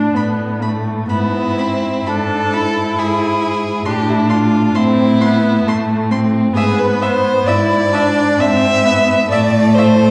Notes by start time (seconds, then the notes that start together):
Already playing: D4
0.14 A2 B3 B5
0.62 A3 B5
1.09 G#2 B3 E4 B5
1.59 C4 B5
2.07 G#2 D4 A4 B5
2.53 E4 B5
2.98 G#2 G#4 B5
3.42 B5
3.85 A2 D4 G4 C6
4.09 E4
4.29 F4 C6
4.74 A2 C4 E4 C6
5.21 B3 C6
5.66 A2 A3 C6
6.11 C4 C6
6.53 G#2 B3 G#4 E5
6.79 B4
7.01 C5 E5
7.46 G#2 E4 D5 E5
7.93 D4 E5
8.39 G#2 C4 E5
8.86 B3 E5
9.30 A2 A3 D5 E5
9.74 C5
9.78 E5